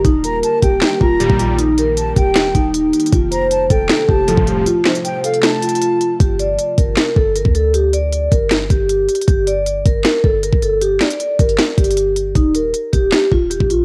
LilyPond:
<<
  \new Staff \with { instrumentName = "Flute" } { \time 4/4 \key g \minor \tempo 4 = 156 r8 bes''8 a''8 g''4 bes''4. | r4 a''8 g''4. r4 | r8 bes''8 a''8 g''4 a''4. | r4 g''8 f''8 a''2 |
r1 | r1 | r1 | r1 |
r1 | }
  \new Staff \with { instrumentName = "Vibraphone" } { \time 4/4 \key g \minor ees'8 bes'4 g'4 f'8 g'8 f'8 | ees'8 bes'4 g'4 ees'4. | f'8 c''4 a'4 g'8 a'8 g'8 | f'8 c''4 a'4 f'4. |
g'8 d''4 bes'4 a'8 bes'8 a'8 | g'8 d''4 bes'4 g'4. | g'8 d''4 bes'4 a'8 bes'8 a'8 | g'8 d''4 bes'4 g'4. |
ees'8 bes'4 g'4 f'8 g'8 f'8 | }
  \new Staff \with { instrumentName = "Ambient pad" } { \clef bass \time 4/4 \key g \minor <ees g bes g'>1~ | <ees g bes g'>1 | <c f a f'>1~ | <c f a f'>1 |
r1 | r1 | r1 | r1 |
r1 | }
  \new Staff \with { instrumentName = "Analog polysynth" } { \clef bass \time 4/4 \key g \minor r2. <ees, bes, g>4 | r1 | r2. <c, a, f>4 | r1 |
r1 | r1 | r1 | r1 |
r1 | }
  \new Staff \with { instrumentName = "808-style bass" } { \clef bass \time 4/4 \key g \minor ees,,4 r8 ees,,8 r8 ees,,8. bes,,8.~ | bes,,4. ees,,4 ees,,4 r8 | f,,4. f,,8 r8 f,,8. f,,8. | r1 |
g,,4 r8 g,,8 r8 g,,8. d,8.~ | d,4. g,,4 g,,4 r8 | g,,4. g,,8 r8 g,,8. g,,8.~ | g,,8 r4 g,,8 r8 g,,4. |
ees,,4 r8 ees,,8 r8 ees,,8. bes,,8. | }
  \new DrumStaff \with { instrumentName = "Drums" } \drummode { \time 4/4 <hh bd>8 hh8 hh8 <hh bd>8 <hc hh sn>8 bd8 hh16 bd16 hh8 | hh8 hh8 hh8 <hh bd>8 <hc hh sn>8 <hh bd>8 \tuplet 3/2 { hh16 r16 r16 hh16 hh16 hh16 } | <hh bd>8 hh8 hh8 <hh bd>8 <hc hh sn>8 bd8 hh16 bd16 hh8 | hh8 <hc hh sn>16 hh16 hh8 hh16 hh16 \tuplet 3/2 { <hc hh sn>16 r16 r16 hh16 hh16 hh16 } hh8 hh8 |
<hh bd>8 hh8 hh8 <hh bd>8 <hc hh sn>8 bd8 hh16 bd16 hh8 | hh8 hh8 hh8 <hh bd>8 <hc hh sn>8 <hh bd>8 \tuplet 3/2 { hh16 r16 r16 hh16 hh16 hh16 } | <hh bd>8 hh8 hh8 <hh bd>8 <hc hh sn>8 bd8 hh16 bd16 hh8 | hh8 <hc hh sn>16 hh16 hh8 <hh bd>16 hh16 \tuplet 3/2 { <hc hh sn>16 r16 r16 <hh bd>16 hh16 hh16 } hh8 hh8 |
<hh bd>8 hh8 hh8 <hh bd>8 <hc hh sn>8 bd8 hh16 bd16 hh8 | }
>>